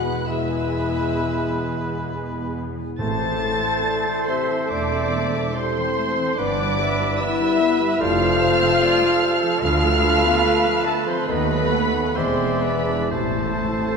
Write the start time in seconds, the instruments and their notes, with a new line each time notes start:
Already playing: double bass section E1, cello section E2, harp E3 B3 E4 B4 B5, bassoon G#3, viola section B3 G#4, french horn section F#4, oboe B4, clarinet B4, violin section F#5 F#6, flute F#5
0.04 harp G#4
0.25 bassoon G#3, viola section B3 G#4, french horn section E4, oboe B4, harp B4, flute E5, violin section E5 E6
0.50 harp G#4
0.73 harp G#5
0.96 harp B5
1.18 harp G#5
1.40 harp B4
1.64 harp G#4
1.86 harp B3
2.09 harp E4
2.32 harp B3
2.56 harp E4
2.78 harp B3
2.98 double bass section A1, cello section A2, timpani A2, harp A2, viola section C3 A4, bassoon A3, french horn section A4, clarinet C5, oboe C5, violin section A5 A6, flute A5
3.21 viola section E3, harp E3
3.42 viola section A3, harp C4
3.63 viola section C4, harp E4
3.84 viola section A3, harp A4, clarinet D5
4.06 viola section E3, harp C5
4.27 viola section C3, french horn section C4, violin section C5 C6, flute C5, clarinet E5, harp E5
4.48 viola section E3, harp A5
4.68 double bass section E1, cello section E2, viola section A3, french horn section D4, violin section D5 D6, harp E5
4.72 flute D5
4.91 viola section C4, harp C5
5.12 viola section A3, harp A4
5.33 viola section E3, harp E4
5.54 viola section C3, bassoon A3, french horn section C4, harp C4, oboe C5, violin section C5 C6, clarinet C5, flute C5
5.76 viola section E3, harp E3
5.97 viola section A3, harp C4
6.18 harp E3, viola section C4
6.36 double bass section G1, cello section G2, harp G2, viola section E3 B4, bassoon B3, french horn section D4, oboe B4, clarinet B4, flute D5, violin section D5 D6
6.59 viola section G3, harp G3
6.80 viola section B3, harp B3, clarinet E5
7.00 viola section G3, harp E4
7.20 viola section E3, bassoon B3, french horn section E4, oboe B4, harp B4, clarinet D5, flute E5, violin section E5 E6
7.39 viola section G3, harp E4
7.60 viola section B3, clarinet E5
7.80 viola section G3, harp B5
8.00 double bass section F1, cello section F2, harp F2, viola section C3 A4, bassoon A3, french horn section F4, oboe C5, clarinet D5, violin section F5 F6, flute F5
8.22 harp C3, viola section F3
8.41 viola section A3, harp C4, clarinet C5
8.62 viola section C4, harp F4
8.82 viola section A3, harp A4, clarinet D5
9.03 viola section F3
9.23 viola section C3, clarinet C5, harp F5
9.43 viola section F3, harp A5
9.62 double bass section D2, cello section D2, harp D3, viola section D3, bassoon A3, french horn section F4, oboe B4, violin section F5 F6, clarinet F5, flute F5
9.84 viola section F3, harp A3
10.03 viola section A3, harp B3
10.24 viola section B3, harp F4
10.45 viola section A3, harp A4
10.65 viola section F3
10.85 viola section D3, french horn section A3, flute A4, violin section A4 A5, harp F5
11.07 viola section F3, french horn section C4, flute C5, violin section C5 C6, harp A5
11.26 double bass section D#2, cello section D#2, viola section D#3, harp D#3, bassoon A3, flute B4, violin section B4 B5, oboe B4, clarinet D#5
11.31 french horn section B3
11.50 viola section F#3, harp A3
11.72 viola section A3, harp B3, clarinet F#5
11.94 viola section B3, harp F#4
12.15 double bass section E1, cello section E2, harp E3, viola section E3 G#4, bassoon G#3, french horn section C4, violin section C5 C6, flute C5, oboe D5, clarinet E5
12.39 viola section G#3, harp B3
12.62 viola section B3, french horn section B3, harp D4, flute B4, violin section B4 B5
12.86 viola section D4, harp E4
13.10 double bass section A1, harp A2, cello section A2, timpani A2, viola section C3 E4, bassoon A3, french horn section A3, flute A4, violin section A4 A5, clarinet C5, oboe C5
13.20 timpani A2
13.29 timpani A2
13.35 timpani A2, harp E3, viola section E3
13.47 timpani A2
13.55 timpani A2
13.61 timpani A2, viola section A3, harp C4
13.72 timpani A2
13.82 timpani A2, viola section C4
13.86 timpani A2, harp E4